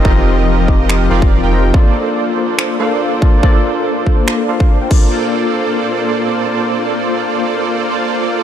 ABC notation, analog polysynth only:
X:1
M:4/4
L:1/16
Q:"Swing 16ths" 1/4=142
K:Bb
V:1 name="Analog polysynth"
[F,FGBe]8- [F,FGBe]2 [F,FGBd]3 [F,FGBg]3 | [B,FAcd]8- [B,FAcd]2 [B,FAcd]6 | [B,FAcd]8- [B,FAcd]2 [B,FAcd]3 [B,FAcg] [B,FAcd]2- | [B,FAcd]16- |
[B,FAcd]16 |]